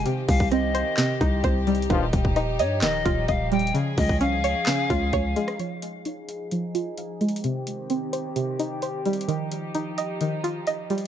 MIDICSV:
0, 0, Header, 1, 7, 480
1, 0, Start_track
1, 0, Key_signature, -4, "minor"
1, 0, Tempo, 461538
1, 57, Time_signature, 4, 2, 24, 8
1, 11513, End_track
2, 0, Start_track
2, 0, Title_t, "Pan flute"
2, 0, Program_c, 0, 75
2, 298, Note_on_c, 0, 77, 80
2, 526, Note_off_c, 0, 77, 0
2, 538, Note_on_c, 0, 75, 97
2, 1456, Note_off_c, 0, 75, 0
2, 2696, Note_on_c, 0, 73, 81
2, 2925, Note_off_c, 0, 73, 0
2, 2936, Note_on_c, 0, 75, 104
2, 3388, Note_off_c, 0, 75, 0
2, 3418, Note_on_c, 0, 77, 79
2, 3646, Note_off_c, 0, 77, 0
2, 3658, Note_on_c, 0, 79, 91
2, 3886, Note_off_c, 0, 79, 0
2, 4138, Note_on_c, 0, 75, 88
2, 4366, Note_off_c, 0, 75, 0
2, 4377, Note_on_c, 0, 77, 93
2, 5776, Note_off_c, 0, 77, 0
2, 11513, End_track
3, 0, Start_track
3, 0, Title_t, "Synth pluck"
3, 0, Program_c, 1, 84
3, 60, Note_on_c, 1, 48, 93
3, 539, Note_on_c, 1, 60, 83
3, 774, Note_on_c, 1, 72, 95
3, 1002, Note_off_c, 1, 48, 0
3, 1014, Note_on_c, 1, 48, 94
3, 1257, Note_on_c, 1, 63, 91
3, 1485, Note_off_c, 1, 72, 0
3, 1498, Note_on_c, 1, 72, 88
3, 1737, Note_on_c, 1, 55, 89
3, 1972, Note_on_c, 1, 51, 93
3, 1976, Note_off_c, 1, 48, 0
3, 1977, Note_off_c, 1, 55, 0
3, 1977, Note_off_c, 1, 63, 0
3, 1978, Note_off_c, 1, 60, 0
3, 1978, Note_off_c, 1, 72, 0
3, 2457, Note_on_c, 1, 63, 90
3, 2698, Note_on_c, 1, 75, 87
3, 2924, Note_off_c, 1, 51, 0
3, 2936, Note_on_c, 1, 51, 97
3, 3175, Note_on_c, 1, 65, 93
3, 3405, Note_off_c, 1, 75, 0
3, 3417, Note_on_c, 1, 75, 92
3, 3658, Note_on_c, 1, 55, 87
3, 3891, Note_on_c, 1, 49, 97
3, 3896, Note_off_c, 1, 65, 0
3, 3897, Note_off_c, 1, 51, 0
3, 3897, Note_off_c, 1, 63, 0
3, 3898, Note_off_c, 1, 55, 0
3, 3898, Note_off_c, 1, 75, 0
3, 4376, Note_on_c, 1, 61, 97
3, 4618, Note_on_c, 1, 73, 93
3, 4845, Note_off_c, 1, 49, 0
3, 4858, Note_on_c, 1, 49, 89
3, 5096, Note_on_c, 1, 65, 92
3, 5326, Note_off_c, 1, 73, 0
3, 5339, Note_on_c, 1, 73, 101
3, 5577, Note_on_c, 1, 56, 85
3, 5817, Note_off_c, 1, 56, 0
3, 5817, Note_off_c, 1, 61, 0
3, 5817, Note_off_c, 1, 65, 0
3, 5817, Note_on_c, 1, 53, 90
3, 5818, Note_off_c, 1, 49, 0
3, 5818, Note_off_c, 1, 73, 0
3, 6298, Note_on_c, 1, 63, 82
3, 6538, Note_on_c, 1, 77, 93
3, 6766, Note_off_c, 1, 53, 0
3, 6779, Note_on_c, 1, 53, 87
3, 7017, Note_on_c, 1, 65, 84
3, 7247, Note_off_c, 1, 77, 0
3, 7259, Note_on_c, 1, 77, 88
3, 7497, Note_on_c, 1, 56, 77
3, 7737, Note_off_c, 1, 56, 0
3, 7737, Note_off_c, 1, 65, 0
3, 7738, Note_off_c, 1, 53, 0
3, 7738, Note_off_c, 1, 63, 0
3, 7738, Note_on_c, 1, 48, 89
3, 7739, Note_off_c, 1, 77, 0
3, 8217, Note_on_c, 1, 60, 80
3, 8453, Note_on_c, 1, 72, 94
3, 8682, Note_off_c, 1, 48, 0
3, 8695, Note_on_c, 1, 48, 90
3, 8937, Note_on_c, 1, 63, 88
3, 9166, Note_off_c, 1, 72, 0
3, 9178, Note_on_c, 1, 72, 85
3, 9418, Note_on_c, 1, 55, 84
3, 9653, Note_on_c, 1, 51, 91
3, 9656, Note_off_c, 1, 48, 0
3, 9657, Note_off_c, 1, 63, 0
3, 9658, Note_off_c, 1, 55, 0
3, 9658, Note_off_c, 1, 60, 0
3, 9658, Note_off_c, 1, 72, 0
3, 10138, Note_on_c, 1, 63, 87
3, 10379, Note_on_c, 1, 75, 87
3, 10605, Note_off_c, 1, 51, 0
3, 10617, Note_on_c, 1, 51, 90
3, 10855, Note_on_c, 1, 65, 86
3, 11086, Note_off_c, 1, 75, 0
3, 11099, Note_on_c, 1, 75, 88
3, 11338, Note_on_c, 1, 55, 79
3, 11513, Note_off_c, 1, 51, 0
3, 11513, Note_off_c, 1, 55, 0
3, 11513, Note_off_c, 1, 63, 0
3, 11513, Note_off_c, 1, 65, 0
3, 11513, Note_off_c, 1, 75, 0
3, 11513, End_track
4, 0, Start_track
4, 0, Title_t, "String section"
4, 0, Program_c, 2, 48
4, 57, Note_on_c, 2, 51, 81
4, 57, Note_on_c, 2, 60, 76
4, 58, Note_on_c, 2, 67, 88
4, 1958, Note_off_c, 2, 51, 0
4, 1958, Note_off_c, 2, 60, 0
4, 1978, Note_on_c, 2, 53, 82
4, 1978, Note_on_c, 2, 63, 76
4, 3859, Note_off_c, 2, 67, 0
4, 3879, Note_off_c, 2, 63, 0
4, 3898, Note_on_c, 2, 61, 76
4, 3898, Note_on_c, 2, 68, 92
4, 5779, Note_off_c, 2, 53, 0
4, 5799, Note_off_c, 2, 61, 0
4, 5799, Note_off_c, 2, 68, 0
4, 5817, Note_on_c, 2, 53, 76
4, 5817, Note_on_c, 2, 68, 85
4, 5818, Note_on_c, 2, 63, 68
4, 7718, Note_off_c, 2, 53, 0
4, 7718, Note_off_c, 2, 63, 0
4, 7718, Note_off_c, 2, 68, 0
4, 7738, Note_on_c, 2, 51, 77
4, 7738, Note_on_c, 2, 60, 70
4, 7738, Note_on_c, 2, 67, 84
4, 9638, Note_off_c, 2, 51, 0
4, 9639, Note_off_c, 2, 60, 0
4, 9657, Note_on_c, 2, 53, 79
4, 9657, Note_on_c, 2, 63, 72
4, 11513, Note_off_c, 2, 53, 0
4, 11513, Note_off_c, 2, 63, 0
4, 11513, Note_off_c, 2, 67, 0
4, 11513, End_track
5, 0, Start_track
5, 0, Title_t, "Brass ensemble"
5, 0, Program_c, 3, 61
5, 1977, Note_on_c, 3, 34, 91
5, 1977, Note_on_c, 3, 43, 94
5, 1977, Note_on_c, 3, 53, 109
5, 2130, Note_off_c, 3, 34, 0
5, 2130, Note_off_c, 3, 53, 0
5, 2131, Note_off_c, 3, 43, 0
5, 11513, End_track
6, 0, Start_track
6, 0, Title_t, "808-style bass"
6, 0, Program_c, 4, 38
6, 297, Note_on_c, 4, 36, 104
6, 873, Note_off_c, 4, 36, 0
6, 1257, Note_on_c, 4, 36, 107
6, 1488, Note_off_c, 4, 36, 0
6, 1497, Note_on_c, 4, 36, 111
6, 1958, Note_off_c, 4, 36, 0
6, 1977, Note_on_c, 4, 27, 118
6, 2208, Note_off_c, 4, 27, 0
6, 2217, Note_on_c, 4, 27, 113
6, 2697, Note_on_c, 4, 43, 99
6, 2713, Note_off_c, 4, 27, 0
6, 2937, Note_on_c, 4, 27, 100
6, 2952, Note_off_c, 4, 43, 0
6, 3165, Note_off_c, 4, 27, 0
6, 3178, Note_on_c, 4, 27, 111
6, 3408, Note_off_c, 4, 27, 0
6, 3417, Note_on_c, 4, 27, 114
6, 3878, Note_off_c, 4, 27, 0
6, 4137, Note_on_c, 4, 37, 110
6, 4378, Note_on_c, 4, 36, 99
6, 4393, Note_off_c, 4, 37, 0
6, 4558, Note_on_c, 4, 37, 103
6, 4574, Note_off_c, 4, 36, 0
6, 4729, Note_off_c, 4, 37, 0
6, 5098, Note_on_c, 4, 37, 107
6, 5328, Note_off_c, 4, 37, 0
6, 5337, Note_on_c, 4, 37, 112
6, 5568, Note_off_c, 4, 37, 0
6, 11513, End_track
7, 0, Start_track
7, 0, Title_t, "Drums"
7, 58, Note_on_c, 9, 42, 74
7, 162, Note_off_c, 9, 42, 0
7, 297, Note_on_c, 9, 46, 99
7, 298, Note_on_c, 9, 36, 104
7, 401, Note_off_c, 9, 46, 0
7, 402, Note_off_c, 9, 36, 0
7, 418, Note_on_c, 9, 36, 101
7, 522, Note_off_c, 9, 36, 0
7, 536, Note_on_c, 9, 42, 70
7, 537, Note_on_c, 9, 37, 68
7, 640, Note_off_c, 9, 42, 0
7, 641, Note_off_c, 9, 37, 0
7, 777, Note_on_c, 9, 42, 91
7, 881, Note_off_c, 9, 42, 0
7, 1012, Note_on_c, 9, 39, 94
7, 1016, Note_on_c, 9, 42, 78
7, 1018, Note_on_c, 9, 38, 114
7, 1116, Note_off_c, 9, 39, 0
7, 1120, Note_off_c, 9, 42, 0
7, 1122, Note_off_c, 9, 38, 0
7, 1258, Note_on_c, 9, 36, 100
7, 1259, Note_on_c, 9, 42, 73
7, 1362, Note_off_c, 9, 36, 0
7, 1363, Note_off_c, 9, 42, 0
7, 1495, Note_on_c, 9, 42, 72
7, 1497, Note_on_c, 9, 36, 89
7, 1599, Note_off_c, 9, 42, 0
7, 1601, Note_off_c, 9, 36, 0
7, 1737, Note_on_c, 9, 42, 44
7, 1817, Note_off_c, 9, 42, 0
7, 1817, Note_on_c, 9, 42, 60
7, 1897, Note_off_c, 9, 42, 0
7, 1897, Note_on_c, 9, 42, 77
7, 1977, Note_off_c, 9, 42, 0
7, 1977, Note_on_c, 9, 36, 120
7, 1977, Note_on_c, 9, 42, 75
7, 2081, Note_off_c, 9, 36, 0
7, 2081, Note_off_c, 9, 42, 0
7, 2216, Note_on_c, 9, 42, 96
7, 2217, Note_on_c, 9, 36, 107
7, 2320, Note_off_c, 9, 42, 0
7, 2321, Note_off_c, 9, 36, 0
7, 2337, Note_on_c, 9, 36, 98
7, 2441, Note_off_c, 9, 36, 0
7, 2455, Note_on_c, 9, 42, 71
7, 2457, Note_on_c, 9, 37, 70
7, 2559, Note_off_c, 9, 42, 0
7, 2561, Note_off_c, 9, 37, 0
7, 2697, Note_on_c, 9, 42, 92
7, 2801, Note_off_c, 9, 42, 0
7, 2931, Note_on_c, 9, 39, 96
7, 2936, Note_on_c, 9, 42, 74
7, 2937, Note_on_c, 9, 38, 116
7, 3035, Note_off_c, 9, 39, 0
7, 3040, Note_off_c, 9, 42, 0
7, 3041, Note_off_c, 9, 38, 0
7, 3178, Note_on_c, 9, 36, 100
7, 3179, Note_on_c, 9, 42, 73
7, 3282, Note_off_c, 9, 36, 0
7, 3283, Note_off_c, 9, 42, 0
7, 3415, Note_on_c, 9, 42, 73
7, 3417, Note_on_c, 9, 36, 90
7, 3519, Note_off_c, 9, 42, 0
7, 3521, Note_off_c, 9, 36, 0
7, 3657, Note_on_c, 9, 42, 46
7, 3737, Note_off_c, 9, 42, 0
7, 3737, Note_on_c, 9, 42, 60
7, 3817, Note_off_c, 9, 42, 0
7, 3817, Note_on_c, 9, 42, 76
7, 3897, Note_off_c, 9, 42, 0
7, 3897, Note_on_c, 9, 42, 72
7, 4001, Note_off_c, 9, 42, 0
7, 4136, Note_on_c, 9, 46, 102
7, 4137, Note_on_c, 9, 36, 107
7, 4240, Note_off_c, 9, 46, 0
7, 4241, Note_off_c, 9, 36, 0
7, 4257, Note_on_c, 9, 36, 98
7, 4361, Note_off_c, 9, 36, 0
7, 4376, Note_on_c, 9, 42, 69
7, 4480, Note_off_c, 9, 42, 0
7, 4618, Note_on_c, 9, 42, 91
7, 4722, Note_off_c, 9, 42, 0
7, 4851, Note_on_c, 9, 39, 90
7, 4855, Note_on_c, 9, 42, 76
7, 4857, Note_on_c, 9, 38, 120
7, 4955, Note_off_c, 9, 39, 0
7, 4959, Note_off_c, 9, 42, 0
7, 4961, Note_off_c, 9, 38, 0
7, 5098, Note_on_c, 9, 36, 97
7, 5099, Note_on_c, 9, 42, 70
7, 5202, Note_off_c, 9, 36, 0
7, 5203, Note_off_c, 9, 42, 0
7, 5335, Note_on_c, 9, 42, 69
7, 5337, Note_on_c, 9, 36, 89
7, 5439, Note_off_c, 9, 42, 0
7, 5441, Note_off_c, 9, 36, 0
7, 5578, Note_on_c, 9, 42, 75
7, 5682, Note_off_c, 9, 42, 0
7, 5698, Note_on_c, 9, 37, 102
7, 5698, Note_on_c, 9, 42, 45
7, 5802, Note_off_c, 9, 37, 0
7, 5802, Note_off_c, 9, 42, 0
7, 5819, Note_on_c, 9, 42, 68
7, 5923, Note_off_c, 9, 42, 0
7, 6057, Note_on_c, 9, 42, 93
7, 6161, Note_off_c, 9, 42, 0
7, 6295, Note_on_c, 9, 42, 64
7, 6399, Note_off_c, 9, 42, 0
7, 6537, Note_on_c, 9, 42, 82
7, 6641, Note_off_c, 9, 42, 0
7, 6775, Note_on_c, 9, 42, 70
7, 6879, Note_off_c, 9, 42, 0
7, 7019, Note_on_c, 9, 42, 67
7, 7123, Note_off_c, 9, 42, 0
7, 7254, Note_on_c, 9, 42, 68
7, 7358, Note_off_c, 9, 42, 0
7, 7497, Note_on_c, 9, 42, 44
7, 7577, Note_off_c, 9, 42, 0
7, 7577, Note_on_c, 9, 42, 55
7, 7656, Note_off_c, 9, 42, 0
7, 7656, Note_on_c, 9, 42, 75
7, 7737, Note_off_c, 9, 42, 0
7, 7737, Note_on_c, 9, 42, 67
7, 7841, Note_off_c, 9, 42, 0
7, 7976, Note_on_c, 9, 42, 90
7, 8080, Note_off_c, 9, 42, 0
7, 8214, Note_on_c, 9, 42, 65
7, 8318, Note_off_c, 9, 42, 0
7, 8457, Note_on_c, 9, 42, 86
7, 8561, Note_off_c, 9, 42, 0
7, 8695, Note_on_c, 9, 42, 73
7, 8799, Note_off_c, 9, 42, 0
7, 8939, Note_on_c, 9, 42, 67
7, 9043, Note_off_c, 9, 42, 0
7, 9174, Note_on_c, 9, 42, 65
7, 9278, Note_off_c, 9, 42, 0
7, 9417, Note_on_c, 9, 42, 44
7, 9497, Note_off_c, 9, 42, 0
7, 9497, Note_on_c, 9, 42, 55
7, 9577, Note_off_c, 9, 42, 0
7, 9577, Note_on_c, 9, 42, 74
7, 9657, Note_off_c, 9, 42, 0
7, 9657, Note_on_c, 9, 42, 69
7, 9761, Note_off_c, 9, 42, 0
7, 9896, Note_on_c, 9, 42, 93
7, 10000, Note_off_c, 9, 42, 0
7, 10136, Note_on_c, 9, 42, 64
7, 10240, Note_off_c, 9, 42, 0
7, 10377, Note_on_c, 9, 42, 86
7, 10481, Note_off_c, 9, 42, 0
7, 10615, Note_on_c, 9, 42, 71
7, 10719, Note_off_c, 9, 42, 0
7, 10859, Note_on_c, 9, 42, 67
7, 10963, Note_off_c, 9, 42, 0
7, 11094, Note_on_c, 9, 42, 64
7, 11198, Note_off_c, 9, 42, 0
7, 11337, Note_on_c, 9, 42, 42
7, 11417, Note_off_c, 9, 42, 0
7, 11417, Note_on_c, 9, 42, 57
7, 11513, Note_off_c, 9, 42, 0
7, 11513, End_track
0, 0, End_of_file